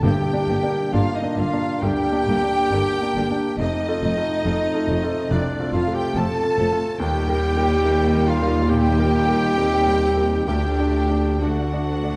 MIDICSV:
0, 0, Header, 1, 11, 480
1, 0, Start_track
1, 0, Key_signature, -2, "minor"
1, 0, Tempo, 890208
1, 13, Time_signature, 4, 2, 24, 8
1, 1933, Tempo, 854701
1, 5293, Tempo, 925926
1, 6638, End_track
2, 0, Start_track
2, 0, Title_t, "Flute"
2, 0, Program_c, 0, 73
2, 17, Note_on_c, 0, 79, 91
2, 501, Note_on_c, 0, 77, 93
2, 509, Note_off_c, 0, 79, 0
2, 620, Note_on_c, 0, 75, 84
2, 628, Note_off_c, 0, 77, 0
2, 740, Note_on_c, 0, 77, 102
2, 748, Note_off_c, 0, 75, 0
2, 978, Note_on_c, 0, 79, 105
2, 986, Note_off_c, 0, 77, 0
2, 1772, Note_off_c, 0, 79, 0
2, 1925, Note_on_c, 0, 75, 103
2, 2908, Note_on_c, 0, 74, 78
2, 2916, Note_off_c, 0, 75, 0
2, 3145, Note_on_c, 0, 77, 95
2, 3153, Note_off_c, 0, 74, 0
2, 3260, Note_on_c, 0, 79, 111
2, 3268, Note_off_c, 0, 77, 0
2, 3384, Note_on_c, 0, 81, 106
2, 3392, Note_off_c, 0, 79, 0
2, 3704, Note_off_c, 0, 81, 0
2, 3858, Note_on_c, 0, 79, 108
2, 4576, Note_on_c, 0, 77, 108
2, 4585, Note_off_c, 0, 79, 0
2, 4811, Note_on_c, 0, 79, 113
2, 4820, Note_off_c, 0, 77, 0
2, 5764, Note_off_c, 0, 79, 0
2, 5767, Note_on_c, 0, 79, 99
2, 6249, Note_on_c, 0, 78, 79
2, 6257, Note_off_c, 0, 79, 0
2, 6638, Note_off_c, 0, 78, 0
2, 6638, End_track
3, 0, Start_track
3, 0, Title_t, "Violin section"
3, 0, Program_c, 1, 48
3, 21, Note_on_c, 1, 79, 106
3, 506, Note_off_c, 1, 79, 0
3, 506, Note_on_c, 1, 77, 109
3, 624, Note_off_c, 1, 77, 0
3, 628, Note_on_c, 1, 75, 99
3, 744, Note_on_c, 1, 77, 105
3, 745, Note_off_c, 1, 75, 0
3, 982, Note_on_c, 1, 79, 127
3, 983, Note_off_c, 1, 77, 0
3, 1934, Note_off_c, 1, 79, 0
3, 1939, Note_on_c, 1, 75, 123
3, 2883, Note_off_c, 1, 75, 0
3, 2902, Note_on_c, 1, 74, 96
3, 3140, Note_off_c, 1, 74, 0
3, 3144, Note_on_c, 1, 77, 107
3, 3260, Note_off_c, 1, 77, 0
3, 3264, Note_on_c, 1, 79, 116
3, 3377, Note_off_c, 1, 79, 0
3, 3382, Note_on_c, 1, 81, 117
3, 3853, Note_on_c, 1, 79, 127
3, 3854, Note_off_c, 1, 81, 0
3, 4552, Note_off_c, 1, 79, 0
3, 4570, Note_on_c, 1, 77, 115
3, 4807, Note_on_c, 1, 79, 127
3, 4808, Note_off_c, 1, 77, 0
3, 5754, Note_off_c, 1, 79, 0
3, 5761, Note_on_c, 1, 79, 98
3, 6238, Note_off_c, 1, 79, 0
3, 6251, Note_on_c, 1, 78, 94
3, 6638, Note_off_c, 1, 78, 0
3, 6638, End_track
4, 0, Start_track
4, 0, Title_t, "Clarinet"
4, 0, Program_c, 2, 71
4, 11, Note_on_c, 2, 67, 96
4, 491, Note_off_c, 2, 67, 0
4, 505, Note_on_c, 2, 65, 88
4, 621, Note_on_c, 2, 63, 85
4, 629, Note_off_c, 2, 65, 0
4, 747, Note_on_c, 2, 65, 90
4, 755, Note_off_c, 2, 63, 0
4, 983, Note_on_c, 2, 67, 120
4, 991, Note_off_c, 2, 65, 0
4, 1929, Note_off_c, 2, 67, 0
4, 1933, Note_on_c, 2, 63, 109
4, 2905, Note_on_c, 2, 62, 84
4, 2914, Note_off_c, 2, 63, 0
4, 3134, Note_off_c, 2, 62, 0
4, 3137, Note_on_c, 2, 65, 92
4, 3255, Note_on_c, 2, 67, 98
4, 3264, Note_off_c, 2, 65, 0
4, 3384, Note_on_c, 2, 69, 119
4, 3392, Note_off_c, 2, 67, 0
4, 3704, Note_off_c, 2, 69, 0
4, 3852, Note_on_c, 2, 67, 119
4, 4568, Note_on_c, 2, 65, 105
4, 4576, Note_off_c, 2, 67, 0
4, 4804, Note_on_c, 2, 67, 127
4, 4812, Note_off_c, 2, 65, 0
4, 5763, Note_off_c, 2, 67, 0
4, 5766, Note_on_c, 2, 67, 105
4, 6259, Note_on_c, 2, 66, 77
4, 6267, Note_off_c, 2, 67, 0
4, 6638, Note_off_c, 2, 66, 0
4, 6638, End_track
5, 0, Start_track
5, 0, Title_t, "Violin section"
5, 0, Program_c, 3, 48
5, 10, Note_on_c, 3, 67, 91
5, 497, Note_on_c, 3, 65, 81
5, 500, Note_off_c, 3, 67, 0
5, 618, Note_off_c, 3, 65, 0
5, 624, Note_on_c, 3, 63, 81
5, 743, Note_off_c, 3, 63, 0
5, 745, Note_on_c, 3, 65, 88
5, 982, Note_on_c, 3, 67, 108
5, 983, Note_off_c, 3, 65, 0
5, 1933, Note_off_c, 3, 67, 0
5, 1944, Note_on_c, 3, 63, 104
5, 2886, Note_off_c, 3, 63, 0
5, 2907, Note_on_c, 3, 62, 80
5, 3139, Note_on_c, 3, 65, 92
5, 3142, Note_off_c, 3, 62, 0
5, 3256, Note_on_c, 3, 67, 92
5, 3258, Note_off_c, 3, 65, 0
5, 3374, Note_on_c, 3, 69, 109
5, 3375, Note_off_c, 3, 67, 0
5, 3850, Note_off_c, 3, 69, 0
5, 3857, Note_on_c, 3, 67, 112
5, 4554, Note_off_c, 3, 67, 0
5, 4570, Note_on_c, 3, 65, 111
5, 4803, Note_on_c, 3, 67, 127
5, 4808, Note_off_c, 3, 65, 0
5, 5749, Note_off_c, 3, 67, 0
5, 5755, Note_on_c, 3, 67, 102
5, 6236, Note_off_c, 3, 67, 0
5, 6256, Note_on_c, 3, 66, 78
5, 6638, Note_off_c, 3, 66, 0
5, 6638, End_track
6, 0, Start_track
6, 0, Title_t, "Felt piano"
6, 0, Program_c, 4, 0
6, 0, Control_c, 4, 64, 127
6, 16, Note_on_c, 4, 43, 78
6, 24, Control_c, 4, 64, 0
6, 125, Control_c, 4, 64, 127
6, 174, Note_off_c, 4, 43, 0
6, 176, Note_on_c, 4, 58, 60
6, 179, Note_on_c, 4, 62, 62
6, 182, Note_on_c, 4, 74, 69
6, 323, Note_off_c, 4, 58, 0
6, 325, Note_off_c, 4, 62, 0
6, 327, Note_off_c, 4, 74, 0
6, 338, Note_on_c, 4, 58, 60
6, 341, Note_on_c, 4, 62, 52
6, 342, Note_on_c, 4, 74, 64
6, 484, Note_off_c, 4, 58, 0
6, 486, Note_off_c, 4, 62, 0
6, 486, Note_off_c, 4, 74, 0
6, 500, Note_on_c, 4, 58, 64
6, 501, Note_on_c, 4, 62, 61
6, 505, Note_on_c, 4, 74, 66
6, 645, Note_off_c, 4, 58, 0
6, 646, Note_off_c, 4, 62, 0
6, 648, Note_off_c, 4, 74, 0
6, 658, Note_on_c, 4, 58, 58
6, 663, Note_on_c, 4, 62, 56
6, 663, Note_on_c, 4, 74, 54
6, 804, Note_off_c, 4, 58, 0
6, 806, Note_off_c, 4, 62, 0
6, 807, Note_off_c, 4, 74, 0
6, 824, Note_on_c, 4, 58, 53
6, 826, Note_on_c, 4, 62, 55
6, 826, Note_on_c, 4, 74, 63
6, 967, Note_off_c, 4, 58, 0
6, 968, Note_off_c, 4, 62, 0
6, 968, Note_off_c, 4, 74, 0
6, 981, Note_on_c, 4, 38, 68
6, 1136, Note_off_c, 4, 38, 0
6, 1141, Note_on_c, 4, 58, 53
6, 1145, Note_on_c, 4, 62, 59
6, 1145, Note_on_c, 4, 74, 61
6, 1285, Note_off_c, 4, 58, 0
6, 1287, Note_off_c, 4, 62, 0
6, 1287, Note_off_c, 4, 74, 0
6, 1304, Note_on_c, 4, 58, 53
6, 1306, Note_on_c, 4, 62, 54
6, 1308, Note_on_c, 4, 74, 62
6, 1446, Note_off_c, 4, 58, 0
6, 1447, Note_off_c, 4, 62, 0
6, 1448, Note_off_c, 4, 74, 0
6, 1462, Note_on_c, 4, 58, 52
6, 1465, Note_on_c, 4, 62, 57
6, 1467, Note_on_c, 4, 74, 56
6, 1604, Note_off_c, 4, 58, 0
6, 1606, Note_off_c, 4, 62, 0
6, 1607, Note_off_c, 4, 74, 0
6, 1624, Note_on_c, 4, 58, 53
6, 1627, Note_on_c, 4, 62, 53
6, 1629, Note_on_c, 4, 74, 57
6, 1764, Note_off_c, 4, 58, 0
6, 1765, Note_off_c, 4, 62, 0
6, 1766, Note_off_c, 4, 74, 0
6, 1783, Note_on_c, 4, 58, 55
6, 1784, Note_on_c, 4, 62, 55
6, 1786, Note_on_c, 4, 74, 55
6, 1921, Note_off_c, 4, 58, 0
6, 1921, Note_off_c, 4, 62, 0
6, 1922, Note_off_c, 4, 74, 0
6, 1938, Note_on_c, 4, 41, 69
6, 1944, Control_c, 4, 64, 0
6, 2043, Control_c, 4, 64, 127
6, 2092, Note_off_c, 4, 41, 0
6, 2098, Note_on_c, 4, 57, 62
6, 2100, Note_on_c, 4, 65, 61
6, 2102, Note_on_c, 4, 69, 66
6, 2242, Note_off_c, 4, 57, 0
6, 2243, Note_off_c, 4, 65, 0
6, 2244, Note_off_c, 4, 69, 0
6, 2260, Note_on_c, 4, 57, 55
6, 2262, Note_on_c, 4, 65, 58
6, 2266, Note_on_c, 4, 69, 62
6, 2404, Note_off_c, 4, 57, 0
6, 2404, Note_off_c, 4, 65, 0
6, 2407, Note_off_c, 4, 69, 0
6, 2421, Note_on_c, 4, 57, 58
6, 2423, Note_on_c, 4, 65, 63
6, 2426, Note_on_c, 4, 69, 58
6, 2565, Note_off_c, 4, 57, 0
6, 2566, Note_off_c, 4, 65, 0
6, 2568, Note_off_c, 4, 69, 0
6, 2579, Note_on_c, 4, 57, 58
6, 2583, Note_on_c, 4, 65, 55
6, 2585, Note_on_c, 4, 69, 60
6, 2724, Note_off_c, 4, 57, 0
6, 2726, Note_off_c, 4, 65, 0
6, 2727, Note_off_c, 4, 69, 0
6, 2745, Note_on_c, 4, 65, 63
6, 2746, Note_on_c, 4, 57, 64
6, 2750, Note_on_c, 4, 69, 69
6, 2887, Note_off_c, 4, 57, 0
6, 2887, Note_off_c, 4, 65, 0
6, 2890, Note_off_c, 4, 69, 0
6, 2900, Note_on_c, 4, 36, 70
6, 3054, Note_off_c, 4, 36, 0
6, 3063, Note_on_c, 4, 65, 65
6, 3064, Note_on_c, 4, 57, 58
6, 3068, Note_on_c, 4, 69, 68
6, 3204, Note_off_c, 4, 65, 0
6, 3205, Note_off_c, 4, 57, 0
6, 3207, Note_off_c, 4, 69, 0
6, 3218, Note_on_c, 4, 57, 59
6, 3220, Note_on_c, 4, 65, 58
6, 3222, Note_on_c, 4, 69, 65
6, 3360, Note_off_c, 4, 57, 0
6, 3362, Note_off_c, 4, 65, 0
6, 3362, Note_off_c, 4, 69, 0
6, 3377, Note_on_c, 4, 57, 55
6, 3377, Note_on_c, 4, 65, 61
6, 3382, Note_on_c, 4, 69, 67
6, 3519, Note_off_c, 4, 57, 0
6, 3519, Note_off_c, 4, 65, 0
6, 3522, Note_off_c, 4, 69, 0
6, 3533, Note_on_c, 4, 57, 64
6, 3533, Note_on_c, 4, 65, 62
6, 3536, Note_on_c, 4, 69, 63
6, 3676, Note_off_c, 4, 57, 0
6, 3676, Note_off_c, 4, 65, 0
6, 3678, Note_off_c, 4, 69, 0
6, 3693, Note_on_c, 4, 57, 59
6, 3693, Note_on_c, 4, 65, 57
6, 3698, Note_on_c, 4, 69, 70
6, 3835, Note_off_c, 4, 57, 0
6, 3836, Note_off_c, 4, 65, 0
6, 3838, Note_off_c, 4, 69, 0
6, 3849, Note_on_c, 4, 39, 94
6, 3861, Control_c, 4, 64, 0
6, 3940, Control_c, 4, 64, 127
6, 4004, Note_off_c, 4, 39, 0
6, 4008, Note_on_c, 4, 55, 67
6, 4010, Note_on_c, 4, 67, 75
6, 4014, Note_on_c, 4, 70, 74
6, 4151, Note_off_c, 4, 55, 0
6, 4152, Note_off_c, 4, 67, 0
6, 4154, Note_off_c, 4, 70, 0
6, 4166, Note_on_c, 4, 55, 64
6, 4169, Note_on_c, 4, 67, 61
6, 4173, Note_on_c, 4, 70, 67
6, 4309, Note_off_c, 4, 55, 0
6, 4311, Note_off_c, 4, 67, 0
6, 4313, Note_off_c, 4, 70, 0
6, 4324, Note_on_c, 4, 55, 60
6, 4327, Note_on_c, 4, 67, 65
6, 4329, Note_on_c, 4, 70, 69
6, 4468, Note_off_c, 4, 55, 0
6, 4470, Note_off_c, 4, 67, 0
6, 4471, Note_off_c, 4, 70, 0
6, 4485, Note_on_c, 4, 55, 69
6, 4487, Note_on_c, 4, 67, 62
6, 4488, Note_on_c, 4, 70, 67
6, 4629, Note_off_c, 4, 55, 0
6, 4630, Note_off_c, 4, 67, 0
6, 4631, Note_off_c, 4, 70, 0
6, 4648, Note_on_c, 4, 55, 64
6, 4648, Note_on_c, 4, 67, 66
6, 4651, Note_on_c, 4, 70, 67
6, 4791, Note_off_c, 4, 55, 0
6, 4791, Note_off_c, 4, 67, 0
6, 4793, Note_off_c, 4, 70, 0
6, 4803, Note_on_c, 4, 46, 78
6, 4961, Note_off_c, 4, 46, 0
6, 4968, Note_on_c, 4, 55, 65
6, 4968, Note_on_c, 4, 67, 59
6, 4972, Note_on_c, 4, 70, 69
6, 5113, Note_off_c, 4, 55, 0
6, 5113, Note_off_c, 4, 67, 0
6, 5115, Note_off_c, 4, 70, 0
6, 5131, Note_on_c, 4, 55, 63
6, 5133, Note_on_c, 4, 67, 60
6, 5134, Note_on_c, 4, 70, 63
6, 5277, Note_off_c, 4, 55, 0
6, 5278, Note_off_c, 4, 67, 0
6, 5279, Note_off_c, 4, 70, 0
6, 5292, Note_on_c, 4, 55, 55
6, 5294, Note_on_c, 4, 67, 51
6, 5299, Note_on_c, 4, 70, 58
6, 5430, Note_off_c, 4, 55, 0
6, 5431, Note_off_c, 4, 67, 0
6, 5434, Note_off_c, 4, 70, 0
6, 5445, Note_on_c, 4, 55, 56
6, 5449, Note_on_c, 4, 67, 52
6, 5450, Note_on_c, 4, 70, 63
6, 5587, Note_off_c, 4, 55, 0
6, 5589, Note_off_c, 4, 67, 0
6, 5589, Note_off_c, 4, 70, 0
6, 5603, Note_on_c, 4, 55, 51
6, 5605, Note_on_c, 4, 67, 49
6, 5606, Note_on_c, 4, 70, 58
6, 5748, Note_off_c, 4, 55, 0
6, 5749, Note_off_c, 4, 67, 0
6, 5750, Note_off_c, 4, 70, 0
6, 5764, Note_on_c, 4, 38, 70
6, 5775, Control_c, 4, 64, 0
6, 5883, Control_c, 4, 64, 127
6, 5922, Note_off_c, 4, 38, 0
6, 5927, Note_on_c, 4, 57, 51
6, 5928, Note_on_c, 4, 62, 52
6, 5930, Note_on_c, 4, 74, 57
6, 6073, Note_off_c, 4, 57, 0
6, 6074, Note_off_c, 4, 62, 0
6, 6075, Note_off_c, 4, 74, 0
6, 6085, Note_on_c, 4, 57, 47
6, 6087, Note_on_c, 4, 62, 47
6, 6088, Note_on_c, 4, 74, 51
6, 6231, Note_off_c, 4, 57, 0
6, 6232, Note_off_c, 4, 62, 0
6, 6233, Note_off_c, 4, 74, 0
6, 6252, Note_on_c, 4, 57, 51
6, 6254, Note_on_c, 4, 62, 51
6, 6254, Note_on_c, 4, 74, 52
6, 6395, Note_off_c, 4, 57, 0
6, 6396, Note_off_c, 4, 62, 0
6, 6396, Note_off_c, 4, 74, 0
6, 6412, Note_on_c, 4, 57, 43
6, 6415, Note_on_c, 4, 62, 45
6, 6416, Note_on_c, 4, 74, 53
6, 6556, Note_off_c, 4, 57, 0
6, 6557, Note_off_c, 4, 62, 0
6, 6558, Note_off_c, 4, 74, 0
6, 6571, Note_on_c, 4, 57, 44
6, 6571, Note_on_c, 4, 62, 46
6, 6574, Note_on_c, 4, 74, 49
6, 6638, Note_off_c, 4, 57, 0
6, 6638, Note_off_c, 4, 62, 0
6, 6638, Note_off_c, 4, 74, 0
6, 6638, End_track
7, 0, Start_track
7, 0, Title_t, "French horn section"
7, 0, Program_c, 5, 60
7, 15, Note_on_c, 5, 58, 89
7, 15, Note_on_c, 5, 62, 90
7, 1912, Note_off_c, 5, 62, 0
7, 1913, Note_off_c, 5, 58, 0
7, 1936, Note_on_c, 5, 57, 85
7, 1940, Note_on_c, 5, 60, 82
7, 3761, Note_off_c, 5, 57, 0
7, 3761, Note_off_c, 5, 60, 0
7, 3857, Note_on_c, 5, 46, 101
7, 3857, Note_on_c, 5, 63, 98
7, 5746, Note_off_c, 5, 63, 0
7, 5772, Note_on_c, 5, 62, 75
7, 6232, Note_off_c, 5, 46, 0
7, 6253, Note_on_c, 5, 57, 70
7, 6638, Note_off_c, 5, 57, 0
7, 6638, Note_off_c, 5, 62, 0
7, 6638, End_track
8, 0, Start_track
8, 0, Title_t, "Viola section"
8, 0, Program_c, 6, 48
8, 16, Note_on_c, 6, 58, 75
8, 18, Note_on_c, 6, 50, 75
8, 59, Note_off_c, 6, 58, 0
8, 61, Note_off_c, 6, 50, 0
8, 264, Note_on_c, 6, 50, 61
8, 264, Note_on_c, 6, 58, 64
8, 307, Note_off_c, 6, 50, 0
8, 307, Note_off_c, 6, 58, 0
8, 505, Note_on_c, 6, 58, 69
8, 509, Note_on_c, 6, 50, 72
8, 548, Note_off_c, 6, 58, 0
8, 552, Note_off_c, 6, 50, 0
8, 745, Note_on_c, 6, 58, 63
8, 746, Note_on_c, 6, 50, 68
8, 788, Note_off_c, 6, 58, 0
8, 789, Note_off_c, 6, 50, 0
8, 987, Note_on_c, 6, 50, 63
8, 987, Note_on_c, 6, 58, 62
8, 1030, Note_off_c, 6, 58, 0
8, 1031, Note_off_c, 6, 50, 0
8, 1232, Note_on_c, 6, 50, 70
8, 1234, Note_on_c, 6, 58, 76
8, 1275, Note_off_c, 6, 50, 0
8, 1278, Note_off_c, 6, 58, 0
8, 1470, Note_on_c, 6, 50, 72
8, 1471, Note_on_c, 6, 58, 71
8, 1513, Note_off_c, 6, 50, 0
8, 1514, Note_off_c, 6, 58, 0
8, 1710, Note_on_c, 6, 50, 73
8, 1711, Note_on_c, 6, 58, 70
8, 1753, Note_off_c, 6, 50, 0
8, 1754, Note_off_c, 6, 58, 0
8, 1938, Note_on_c, 6, 53, 75
8, 1940, Note_on_c, 6, 57, 75
8, 1983, Note_off_c, 6, 53, 0
8, 1985, Note_off_c, 6, 57, 0
8, 2182, Note_on_c, 6, 53, 61
8, 2183, Note_on_c, 6, 57, 66
8, 2227, Note_off_c, 6, 53, 0
8, 2228, Note_off_c, 6, 57, 0
8, 2421, Note_on_c, 6, 53, 71
8, 2421, Note_on_c, 6, 57, 74
8, 2466, Note_off_c, 6, 53, 0
8, 2466, Note_off_c, 6, 57, 0
8, 2667, Note_on_c, 6, 57, 63
8, 2669, Note_on_c, 6, 53, 68
8, 2712, Note_off_c, 6, 57, 0
8, 2714, Note_off_c, 6, 53, 0
8, 2901, Note_on_c, 6, 53, 72
8, 2903, Note_on_c, 6, 57, 61
8, 2946, Note_off_c, 6, 53, 0
8, 2948, Note_off_c, 6, 57, 0
8, 3149, Note_on_c, 6, 53, 79
8, 3150, Note_on_c, 6, 57, 74
8, 3194, Note_off_c, 6, 53, 0
8, 3194, Note_off_c, 6, 57, 0
8, 3383, Note_on_c, 6, 57, 80
8, 3385, Note_on_c, 6, 53, 77
8, 3428, Note_off_c, 6, 57, 0
8, 3430, Note_off_c, 6, 53, 0
8, 3618, Note_on_c, 6, 57, 80
8, 3619, Note_on_c, 6, 53, 78
8, 3663, Note_off_c, 6, 57, 0
8, 3664, Note_off_c, 6, 53, 0
8, 3853, Note_on_c, 6, 55, 93
8, 3853, Note_on_c, 6, 58, 87
8, 4784, Note_off_c, 6, 55, 0
8, 4784, Note_off_c, 6, 58, 0
8, 4810, Note_on_c, 6, 55, 79
8, 4811, Note_on_c, 6, 58, 86
8, 5285, Note_off_c, 6, 58, 0
8, 5302, Note_on_c, 6, 60, 75
8, 5748, Note_off_c, 6, 55, 0
8, 5769, Note_off_c, 6, 60, 0
8, 5769, Note_on_c, 6, 57, 69
8, 5770, Note_on_c, 6, 62, 72
8, 6243, Note_off_c, 6, 57, 0
8, 6243, Note_off_c, 6, 62, 0
8, 6252, Note_on_c, 6, 62, 63
8, 6253, Note_on_c, 6, 57, 66
8, 6638, Note_off_c, 6, 57, 0
8, 6638, Note_off_c, 6, 62, 0
8, 6638, End_track
9, 0, Start_track
9, 0, Title_t, "Timpani"
9, 0, Program_c, 7, 47
9, 14, Note_on_c, 7, 43, 103
9, 721, Note_off_c, 7, 43, 0
9, 6638, End_track
10, 0, Start_track
10, 0, Title_t, "Cello section"
10, 0, Program_c, 8, 48
10, 14, Note_on_c, 8, 43, 86
10, 57, Note_off_c, 8, 43, 0
10, 259, Note_on_c, 8, 43, 76
10, 302, Note_off_c, 8, 43, 0
10, 503, Note_on_c, 8, 43, 83
10, 546, Note_off_c, 8, 43, 0
10, 740, Note_on_c, 8, 43, 75
10, 783, Note_off_c, 8, 43, 0
10, 980, Note_on_c, 8, 43, 80
10, 1023, Note_off_c, 8, 43, 0
10, 1219, Note_on_c, 8, 43, 67
10, 1262, Note_off_c, 8, 43, 0
10, 1461, Note_on_c, 8, 43, 70
10, 1504, Note_off_c, 8, 43, 0
10, 1698, Note_on_c, 8, 43, 68
10, 1741, Note_off_c, 8, 43, 0
10, 1930, Note_on_c, 8, 41, 75
10, 1975, Note_off_c, 8, 41, 0
10, 2178, Note_on_c, 8, 41, 70
10, 2222, Note_off_c, 8, 41, 0
10, 2416, Note_on_c, 8, 41, 80
10, 2461, Note_off_c, 8, 41, 0
10, 2657, Note_on_c, 8, 41, 76
10, 2702, Note_off_c, 8, 41, 0
10, 2898, Note_on_c, 8, 41, 90
10, 2943, Note_off_c, 8, 41, 0
10, 3137, Note_on_c, 8, 41, 81
10, 3182, Note_off_c, 8, 41, 0
10, 3375, Note_on_c, 8, 41, 86
10, 3420, Note_off_c, 8, 41, 0
10, 3612, Note_on_c, 8, 41, 69
10, 3657, Note_off_c, 8, 41, 0
10, 3846, Note_on_c, 8, 39, 95
10, 5741, Note_off_c, 8, 39, 0
10, 5765, Note_on_c, 8, 38, 71
10, 6194, Note_off_c, 8, 38, 0
10, 6252, Note_on_c, 8, 38, 77
10, 6638, Note_off_c, 8, 38, 0
10, 6638, End_track
11, 0, Start_track
11, 0, Title_t, "Double bass section"
11, 0, Program_c, 10, 48
11, 12, Note_on_c, 10, 31, 78
11, 55, Note_off_c, 10, 31, 0
11, 258, Note_on_c, 10, 31, 70
11, 301, Note_off_c, 10, 31, 0
11, 502, Note_on_c, 10, 31, 83
11, 545, Note_off_c, 10, 31, 0
11, 749, Note_on_c, 10, 31, 72
11, 792, Note_off_c, 10, 31, 0
11, 987, Note_on_c, 10, 31, 93
11, 1030, Note_off_c, 10, 31, 0
11, 1227, Note_on_c, 10, 31, 85
11, 1270, Note_off_c, 10, 31, 0
11, 1466, Note_on_c, 10, 31, 84
11, 1509, Note_off_c, 10, 31, 0
11, 1699, Note_on_c, 10, 31, 73
11, 1742, Note_off_c, 10, 31, 0
11, 1939, Note_on_c, 10, 29, 84
11, 1984, Note_off_c, 10, 29, 0
11, 2178, Note_on_c, 10, 29, 74
11, 2223, Note_off_c, 10, 29, 0
11, 2424, Note_on_c, 10, 29, 85
11, 2469, Note_off_c, 10, 29, 0
11, 2666, Note_on_c, 10, 29, 85
11, 2711, Note_off_c, 10, 29, 0
11, 2904, Note_on_c, 10, 29, 84
11, 2949, Note_off_c, 10, 29, 0
11, 3138, Note_on_c, 10, 29, 78
11, 3183, Note_off_c, 10, 29, 0
11, 3373, Note_on_c, 10, 29, 96
11, 3418, Note_off_c, 10, 29, 0
11, 3613, Note_on_c, 10, 29, 70
11, 3658, Note_off_c, 10, 29, 0
11, 3847, Note_on_c, 10, 39, 97
11, 5742, Note_off_c, 10, 39, 0
11, 5766, Note_on_c, 10, 38, 76
11, 6638, Note_off_c, 10, 38, 0
11, 6638, End_track
0, 0, End_of_file